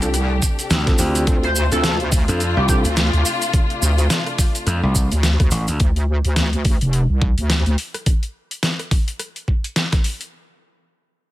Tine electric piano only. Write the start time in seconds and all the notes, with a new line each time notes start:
0.02 C4 D4 F4 A4
0.87 C4 D4 F4 A4
0.99 C4 D4 F4 G4
1.27 C4 D4 F4 A4
1.72 C4 D4 F4 A4
2.28 C4 D4 F4 A4
2.69 C4 D4 F4 A4